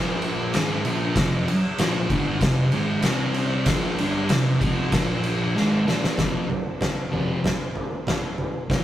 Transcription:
0.00 0.53 A#2 medium
0.00 0.54 F3 medium
0.00 0.54 A#3 loud
0.22 ride medium
0.54 0.84 G#2 loud
0.54 0.84 D#3 loud
0.54 0.85 G#3 loud
0.54 snare loud
0.54 ride loud
0.85 1.16 A#2 medium
0.85 1.16 F3 loud
0.85 1.17 A#3 loud
0.85 ride medium
1.16 1.48 F2 loud
1.16 1.48 C3 medium
1.16 1.48 F3 loud
1.16 kick loud
1.16 snare loud
1.16 ride medium
1.48 muted distorted electric guitar stroke medium
1.48 ride medium
1.78 2.10 A#2 loud
1.78 2.11 F3 loud
1.78 2.11 A#3 loud
1.78 snare loud
1.78 ride medium
2.10 2.42 G2 loud
2.10 2.42 D3 loud
2.10 2.42 G3 loud
2.10 kick medium
2.10 ride medium
2.41 2.67 F2 medium
2.41 2.67 C3 medium
2.41 kick loud
2.41 snare loud
2.41 ride medium
2.72 3.04 G#2 medium
2.72 3.04 D#3 medium
2.72 3.05 G#3 loud
2.72 ride medium
3.02 3.66 C3 medium
3.02 3.67 G3 loud
3.02 3.67 C4 loud
3.02 snare loud
3.02 ride medium
3.34 ride medium
3.66 3.98 A#2 medium
3.66 3.99 F3 loud
3.66 3.99 A#3 loud
3.66 kick loud
3.66 snare loud
3.66 ride loud
3.98 4.29 G2 medium
3.98 4.30 D3 medium
3.98 4.30 G3 loud
3.98 ride medium
4.29 4.55 F2 medium
4.29 4.56 C3 medium
4.29 snare loud
4.29 ride loud
4.60 4.91 F2 loud
4.60 4.92 C3 loud
4.60 4.93 F3 loud
4.60 kick loud
4.60 ride medium
4.92 5.55 A#2 medium
4.92 5.55 F3 medium
4.92 5.56 A#3 loud
4.92 kick loud
4.92 snare loud
4.92 ride loud
5.24 ride medium
5.55 5.86 G#2 medium
5.55 5.86 D#3 medium
5.55 5.86 G#3 loud
5.55 snare medium
5.86 6.17 A#2 medium
5.86 6.18 F3 medium
5.86 6.18 A#3 medium
5.86 snare medium
6.04 snare medium
6.17 6.43 F2 medium
6.17 6.44 C3 medium
6.17 6.44 F3 loud
6.17 kick loud
6.17 snare loud
6.17 floor tom medium
6.50 floor tom medium
6.81 snare loud
6.81 floor tom medium
7.11 7.38 F2 medium
7.11 7.38 C3 medium
7.11 7.38 F3 loud
7.11 floor tom medium
7.44 snare loud
7.44 floor tom medium
7.75 floor tom medium
8.07 snare loud
8.07 floor tom medium
8.38 floor tom medium
8.70 8.84 F2 medium
8.70 8.84 C3 medium
8.70 8.84 F3 medium
8.70 kick loud
8.70 snare loud
8.70 floor tom medium

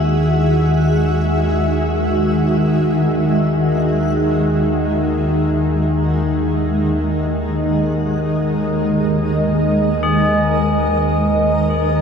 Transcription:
0.00 12.02 D#2 medium
0.00 12.02 D#3 medium
0.00 12.02 G#3 medium
0.00 2.25 F#4 medium
0.00 4.96 F#4 medium
0.00 6.20 G#4 medium
0.00 6.52 E5 medium
0.00 12.02 F#5 medium
5.86 12.02 A#4 medium
6.13 12.02 D#5 medium
10.03 12.02 G#4 medium

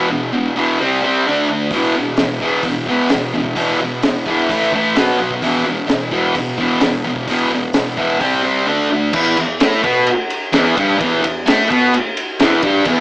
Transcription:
0.09 0.30 E2 medium
0.09 0.30 B2 medium
0.33 0.54 E2 medium
0.33 0.54 B2 medium
0.56 0.78 E2 loud
0.56 0.78 B2 loud
0.56 0.78 E3 loud
0.79 1.01 C3 medium
0.79 1.02 G3 loud
0.79 1.02 C4 loud
1.02 1.24 C3 medium
1.02 1.25 G3 loud
1.02 1.25 C4 loud
1.26 1.47 D3 medium
1.26 1.48 A3 medium
1.26 1.48 D4 medium
1.49 1.70 D3 medium
1.49 1.70 A3 medium
1.71 1.94 E2 medium
1.71 1.94 B2 medium
1.71 1.94 E3 loud
1.71 kick loud
1.71 open hi-hat medium
1.96 2.16 E2 medium
1.96 2.16 B2 medium
2.17 2.39 E2 medium
2.17 2.39 B2 medium
2.17 snare loud
2.17 open hi-hat medium
2.40 2.62 E2 loud
2.40 2.63 B2 medium
2.40 2.63 E3 loud
2.40 kick medium
2.63 2.85 E2 medium
2.63 2.85 B2 medium
2.63 kick loud
2.63 open hi-hat medium
2.86 3.09 E2 medium
2.86 3.09 B2 medium
2.86 3.10 E3 medium
2.86 kick medium
3.09 3.32 E2 medium
3.09 3.32 B2 medium
3.09 snare loud
3.09 open hi-hat medium
3.34 3.54 E2 medium
3.34 3.55 B2 medium
3.44 kick medium
3.56 3.78 E2 medium
3.56 3.78 B2 loud
3.56 3.79 E3 medium
3.56 kick medium
3.56 open hi-hat medium
3.79 4.00 E2 medium
3.79 4.01 B2 medium
4.02 4.24 E2 medium
4.02 4.24 B2 medium
4.02 snare loud
4.02 open hi-hat medium
4.26 4.48 E2 loud
4.26 4.48 B2 medium
4.26 4.49 E3 loud
4.26 kick medium
4.49 4.71 A2 medium
4.49 4.71 E3 medium
4.49 4.72 A3 loud
4.49 kick loud
4.49 open hi-hat medium
4.72 4.95 A2 medium
4.72 4.95 E3 medium
4.72 4.95 A3 loud
4.72 kick medium
4.96 5.18 B2 medium
4.96 5.18 F#3 medium
4.96 5.18 B3 loud
4.96 snare loud
4.96 open hi-hat medium
5.19 5.40 B2 medium
5.19 5.40 F#3 medium
5.31 kick medium
5.42 5.64 E2 medium
5.42 5.65 B2 medium
5.42 5.65 E3 loud
5.42 kick medium
5.42 open hi-hat medium
5.66 5.86 E2 medium
5.66 5.87 B2 medium
5.87 6.09 E2 medium
5.87 6.09 B2 medium
5.87 snare loud
5.87 open hi-hat medium
6.11 6.33 E2 loud
6.11 6.34 B2 loud
6.11 6.34 E3 loud
6.11 kick medium
6.35 6.56 E2 medium
6.35 6.56 B2 medium
6.35 kick loud
6.35 open hi-hat medium
6.58 6.80 E2 medium
6.58 6.81 B2 loud
6.58 6.81 E3 loud
6.58 kick medium
6.80 7.02 E2 medium
6.80 7.03 B2 medium
6.80 snare loud
6.80 open hi-hat medium
7.04 7.26 E2 medium
7.04 7.26 B2 medium
7.16 kick medium
7.28 7.50 E2 medium
7.28 7.50 B2 loud
7.28 7.50 E3 medium
7.28 kick medium
7.28 open hi-hat medium
7.51 7.72 E2 medium
7.51 7.72 B2 medium
7.73 7.95 E2 medium
7.73 7.95 B2 medium
7.73 snare loud
7.73 open hi-hat medium
7.97 8.19 E2 medium
7.97 8.19 B2 loud
7.97 8.20 E3 loud
7.97 kick medium
8.20 8.41 C3 medium
8.20 8.42 G3 loud
8.20 8.43 C4 loud
8.20 kick loud
8.20 open hi-hat medium
8.43 8.65 C3 medium
8.43 8.66 G3 loud
8.43 8.66 C4 loud
8.67 8.89 D3 medium
8.67 8.89 A3 medium
8.67 8.90 D4 medium
8.90 9.11 D3 medium
8.90 9.12 A3 medium
9.13 9.36 E2 medium
9.13 9.37 E3 loud
9.13 kick loud
9.13 crash loud
9.37 9.56 E2 medium
9.37 ride medium
9.60 9.82 A2 medium
9.60 9.83 A3 loud
9.60 snare loud
9.60 ride medium
9.83 10.06 B2 loud
9.83 10.06 B3 loud
9.83 kick loud
9.83 ride medium
10.07 ride loud
10.30 ride medium
10.53 10.76 E2 medium
10.53 10.76 E3 medium
10.53 snare loud
10.53 ride loud
10.77 10.98 G2 medium
10.77 11.00 G3 medium
10.77 kick loud
10.77 ride medium
10.98 11.21 E2 loud
10.98 11.23 E3 loud
10.98 kick loud
10.98 ride loud
11.22 11.42 E2 medium
11.22 ride medium
11.46 11.68 A2 medium
11.46 11.69 A3 loud
11.46 snare loud
11.46 ride loud
11.69 11.92 B2 medium
11.69 11.93 B3 loud
11.69 kick loud
11.69 ride medium
11.94 ride loud
12.17 ride medium
12.39 12.62 E2 medium
12.39 12.63 E3 loud
12.39 snare loud
12.39 ride loud
12.62 12.85 G2 medium
12.62 12.86 G3 loud
12.62 kick loud
12.62 ride medium
12.85 13.00 E2 loud
12.85 13.00 E3 loud
12.85 kick loud
12.85 crash medium

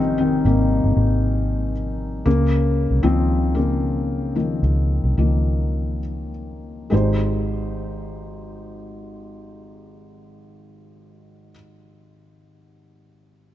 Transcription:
0.00 0.41 G#1 medium
0.00 0.43 C3 soft
0.00 0.20 D#3 medium
0.00 2.27 F3 medium
0.00 0.45 G3 medium
0.00 0.46 A#3 loud
0.00 0.18 C4 medium
0.00 2.27 C#4 medium
0.00 2.27 D#4 medium
0.18 1.70 D#3 medium
0.18 1.69 C4 medium
0.45 0.81 G#1 medium
0.45 2.22 C3 medium
0.45 2.22 G3 soft
0.45 2.22 A#3 medium
0.84 0.96 G1 medium
0.97 2.22 G#1 medium
2.26 2.86 C#2 medium
2.26 3.00 C#3 medium
2.26 3.03 A#3 medium
2.91 3.02 C2 medium
3.03 4.59 C#2 medium
3.03 4.34 D#3 soft
3.03 3.53 F3 medium
3.03 3.53 A#3 medium
3.03 3.57 C4 medium
3.55 6.29 C#3 medium
3.55 4.35 A#3 medium
4.35 4.60 D#3 soft
4.35 4.60 F3 soft
4.35 4.60 A#3 soft
4.63 5.01 C#2 medium
5.04 5.17 C2 medium
5.17 6.88 C#2 medium
5.17 5.99 D#3 soft
5.17 5.99 F3 soft
5.17 5.99 A#3 soft
6.90 11.50 G#1 medium
6.90 11.51 G#1 medium
6.90 11.48 G#3 medium
6.90 11.50 D#4 medium
6.90 11.51 G4 medium
6.90 11.52 C5 medium

